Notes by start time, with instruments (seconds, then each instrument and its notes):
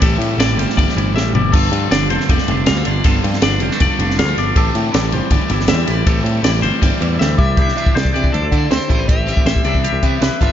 Already playing: clean electric guitar G3
0.02 picked electric bass A1, overdriven electric guitar A2 E3 A3 C4 E4, clean electric guitar A2 G4 A4, kick, ride
0.18 picked electric bass A2, ride
0.37 picked electric bass A1, clean electric guitar E3 D5, snare, ride
0.57 picked electric bass G1, clean electric guitar G3 C5, ride
0.70 snare
0.77 picked electric bass G1, overdriven electric guitar A2 E3 A3 C4 E4, clean electric guitar D5, kick, ride
0.89 snare
0.96 picked electric bass G1, clean electric guitar E3, ride
1.14 picked electric bass A1, clean electric guitar G3 E5, snare
1.33 picked electric bass G1, clean electric guitar E3 D5, floor tom
1.52 picked electric bass G1, overdriven electric guitar G2 D3 F3 B3 F4, clean electric guitar G2 F4 A4, kick, crash
1.72 picked electric bass G2, ride
1.91 picked electric bass G1, clean electric guitar D3 D5, snare, ride
2.10 picked electric bass F1, clean electric guitar A3 C5, ride
2.20 snare
2.28 picked electric bass F1, overdriven electric guitar G2 D3 F3 B3 F4, clean electric guitar D5, kick, ride
2.38 snare
2.48 picked electric bass F1, clean electric guitar D3, ride
2.66 picked electric bass D2, clean electric guitar G3 F5, snare, ride
2.77 clean electric guitar A3
2.85 picked electric bass G1, clean electric guitar D3 D5, ride
3.04 picked electric bass G1, overdriven electric guitar G2 D3 F3 B3 F4, clean electric guitar G2 F4 A4, kick, ride
3.24 picked electric bass G2, ride
3.34 snare
3.42 picked electric bass G1, clean electric guitar D3 D5, snare, ride
3.60 picked electric bass F1, clean electric guitar G3 C5, ride
3.71 clean electric guitar A3, snare
3.80 picked electric bass F1, overdriven electric guitar G2 D3 F3 B3, clean electric guitar D5, kick, ride
3.84 overdriven electric guitar F4
3.99 picked electric bass F1, clean electric guitar D3, ride
4.10 snare
4.19 picked electric bass D2, clean electric guitar G3 F5, snare, ride
4.28 clean electric guitar A3
4.38 picked electric bass G1, clean electric guitar D3 D5, ride
4.56 picked electric bass A1, overdriven electric guitar A2 E3 A3 C4 E4, clean electric guitar A2 G4 A4, kick, ride
4.75 picked electric bass A2, ride
4.92 picked electric bass A1, clean electric guitar E3 D5, snare, ride
5.12 picked electric bass G1, clean electric guitar G3 C5, ride
5.30 picked electric bass G1, overdriven electric guitar A2 E3 A3 C4 E4, clean electric guitar D5, kick, ride
5.50 picked electric bass G1, clean electric guitar E3, ride
5.60 snare
5.68 picked electric bass E2, clean electric guitar E5, snare, ride
5.73 clean electric guitar G3
5.87 picked electric bass A1, clean electric guitar E3 D5, ride
6.07 picked electric bass A1, overdriven electric guitar A2 E3 A3 C4 E4, clean electric guitar A2 G4 A4, kick, ride
6.24 picked electric bass A2, ride
6.43 picked electric bass A1, clean electric guitar E3 D5, snare, ride
6.55 snare
6.62 picked electric bass G1, clean electric guitar G3 C5, ride
6.81 picked electric bass G1, overdriven electric guitar A2 E3 A3 C4 E4, clean electric guitar D5, kick, ride
7.01 picked electric bass E2, clean electric guitar E3, ride
7.19 picked electric bass D2, clean electric guitar G3 E5, snare
7.38 picked electric bass C2, clean electric guitar E3 D5, overdriven electric guitar E5, kick
7.57 picked electric bass C2, clean electric guitar C3 E3 B3 G4, kick, closed hi-hat
7.61 clean electric guitar D4 E4
7.68 snare
7.76 overdriven electric guitar E3 G3 C4 E4 E5, clean electric guitar D4, closed hi-hat
7.86 kick
7.95 picked electric bass C2, clean electric guitar B3 C5, overdriven electric guitar D5, snare, closed hi-hat
8.05 kick
8.13 picked electric bass C3, clean electric guitar E3 D5, overdriven electric guitar E3 G3 C4 E4, closed hi-hat
8.24 kick
8.33 picked electric bass D2, clean electric guitar D3 E4 A4, overdriven electric guitar D5, closed hi-hat
8.42 picked electric bass D2
8.51 picked electric bass D3, overdriven electric guitar D3 A3 D4 F4, clean electric guitar E4, kick, closed hi-hat
8.71 picked electric bass D2, clean electric guitar C4 C5, overdriven electric guitar C5, snare, closed hi-hat
8.88 picked electric bass A1, clean electric guitar A2 E4 B4, overdriven electric guitar E3 A3 C4 E4, kick, closed hi-hat
8.99 clean electric guitar G4
9.08 clean electric guitar C4 G4, overdriven electric guitar E5, kick, closed hi-hat
9.26 overdriven electric guitar E3 A3 C4 E4, clean electric guitar G3, closed hi-hat
9.37 kick
9.46 picked electric bass A1, clean electric guitar E3 C5, snare, closed hi-hat
9.56 kick
9.64 picked electric bass C2, overdriven electric guitar C3 G3 C4 E4, clean electric guitar C3 E3 B3 D4 D5, closed hi-hat
9.69 clean electric guitar E4
9.75 kick
9.84 clean electric guitar D4 G4, closed hi-hat
9.93 picked electric bass C2
10.03 picked electric bass C3, overdriven electric guitar C3 G3 C4 E4, clean electric guitar B3, kick, closed hi-hat
10.21 picked electric bass C2, clean electric guitar E3 B4, snare, closed hi-hat
10.41 picked electric bass G1, clean electric guitar G2 F4 A4, overdriven electric guitar D3 F3 B3 F4 E5, kick, closed hi-hat